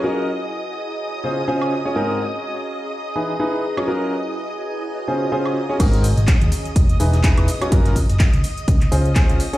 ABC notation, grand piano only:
X:1
M:4/4
L:1/16
Q:"Swing 16ths" 1/4=125
K:Gblyd
V:1 name="Grand piano"
[G,DFGB]2 z8 [D,DFAc] z [D,DFAc]2 z [DFAd] | [A,,CEAB]2 z8 [=E,^D=E^G=B] z [DEGB]2 z [_G,_DF_Gd] | [G,DFGB]2 z8 [D,DFAc] z [D,DFAc]2 z [DFAd] | [A,,CEAB]2 z8 [=E,^D=E^G=B] z [DEGB]2 z [_G,_DF_Gd] |
[G,DFGB]2 z8 [D,DFAc] z [D,DFAc]2 z [DFAd] |]